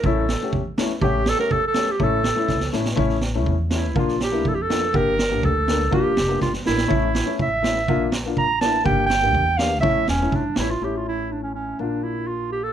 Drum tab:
SD |--o---o-|--o---o-|--o-oooo|-oo---o-|
BD |o---o---|o---o---|o---o---|o---o---|

SD |-oo---o-|--o---o-|--o-oooo|--o---o-|
BD |o---o---|o---o---|o---o---|o---o---|

SD |--o---o-|--o---o-|--o---o-|--------|
BD |o---o---|o---o---|o---o---|--------|

SD |--------|
BD |--------|